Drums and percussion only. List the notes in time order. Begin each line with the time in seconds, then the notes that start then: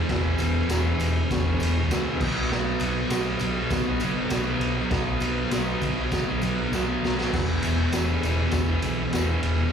0.09 kick, snare, ride
0.38 ride, tambourine
0.69 snare, ride, tambourine
1.00 ride, tambourine
1.31 kick, snare, ride, tambourine
1.60 ride, tambourine
1.91 snare, ride, tambourine
2.21 kick, crash
2.52 snare
2.80 ride, tambourine
3.10 snare, ride, tambourine
3.39 ride, tambourine
3.70 kick, snare, ride, tambourine
4.00 ride, tambourine
4.30 snare, ride, tambourine
4.61 ride
4.91 kick, snare, ride, tambourine
5.20 ride, tambourine
5.51 snare, ride, tambourine
5.82 kick, ride, tambourine
6.12 kick, snare, ride, tambourine
6.42 ride, tambourine
6.73 snare, tambourine
7.04 snare, tambourine
7.21 snare
7.33 kick, snare, crash
7.63 ride, tambourine
7.92 snare, ride, tambourine
8.23 ride, tambourine
8.51 kick, snare, ride, tambourine
8.82 ride, tambourine
9.13 snare, ride, tambourine
9.43 ride